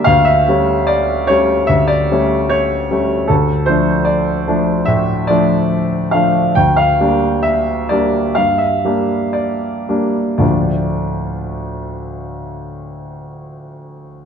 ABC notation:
X:1
M:4/4
L:1/16
Q:1/4=69
K:Dm
V:1 name="Grand piano"
f e3 d2 ^c2 e d3 c4 | A2 c2 d4 e2 d4 f2 | g f3 e2 d2 f e3 d4 | [D,,A,,F,A,DFd]16 |]
V:2 name="Grand piano"
D,,2 [G,A,^C]4 [G,A,C]2 D,,2 [G,A,C]4 [G,A,C]2 | D,,2 [F,A,D]4 [F,A,D]2 A,,2 [F,A,D]4 [F,A,D]2 | D,,2 [G,B,D]4 [G,B,D]2 G,,2 [G,B,D]4 [G,B,D]2 | z16 |]